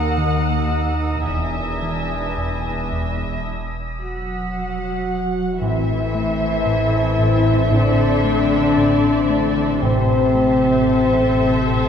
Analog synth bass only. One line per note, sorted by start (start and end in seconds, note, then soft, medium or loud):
0.18 0.50 D#3 medium
0.71 1.04 D#4 soft
1.27 1.60 E2 medium
1.82 2.15 E3 soft
2.38 2.70 E2 soft
2.92 3.25 E2 medium
5.61 5.93 A2 medium
6.15 6.46 A3 medium
6.66 6.98 A2 medium
7.19 7.51 A2 medium
7.72 8.03 A2 medium
8.24 8.56 A3 medium
8.77 9.08 A2 medium
9.29 9.61 A3 medium
9.83 10.14 A2 medium
10.35 10.67 A3 medium
10.88 11.20 A2 medium
11.40 11.72 A2 soft